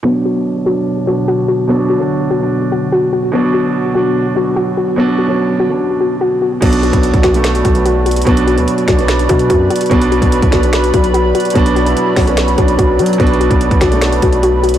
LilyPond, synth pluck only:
\new Staff \with { instrumentName = "Synth pluck" } { \time 4/4 \key b \minor \tempo 4 = 146 b8 fis'4 fis'4 fis'8 fis'8 fis'8 | b8 fis'4 fis'4 fis'8 fis'8 fis'8 | b8 fis'4 fis'4 fis'8 fis'8 fis'8 | b8 fis'4 fis'4 fis'8 fis'8 fis'8 |
b8 fis'4 fis'4 fis'8 fis'8 fis'8 | b8 fis'4 fis'4 fis'8 fis'8 fis'8 | b8 fis'4 fis'4 fis'8 fis'8 fis'8 | b8 fis'4 fis'4 fis'8 fis'8 fis'8 |
b8 fis'4 fis'4 fis'8 fis'8 fis'8 | }